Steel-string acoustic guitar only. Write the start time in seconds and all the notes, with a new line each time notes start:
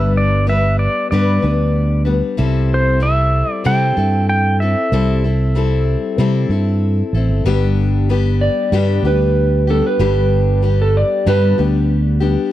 Already playing: G2 D3 G3 B3 D4 B4
0.47 G3 B3 D4 B4
1.12 G2 D3 G3 B3 D4 B4
1.42 G3 B3 D4 B4
2.05 G3 B3 D4 B4
2.37 C3 G3 C4 E4 A4
3.00 G3 C4 E4 A4
3.64 C3 G3 C4 E4 A4
3.97 C4 E4 A4
4.62 C4 E4 A4
4.92 C3 G3 C4 E4 A4
5.24 C4 E4 A4
5.55 G3 C4 E4 A4
6.18 C3 G3 C4 E4 A4
6.51 C4 E4 A4
7.14 C4 E4 A4
7.46 G2 D3 G3 B3 D4 G4
8.09 G3 B3 D4 G4
8.72 G2 D3 G3 B3 D4 G4
9.04 G3 B3 D4 G4
9.67 G3 B3 D4 G4
9.99 G2 D3 G3 B3 D4 G4
10.62 G3 B3 D4 G4
11.26 G2 D3 G3 B3 D4 G4
11.58 G3 B3 D4 G4
12.20 G3 B3 D4 G4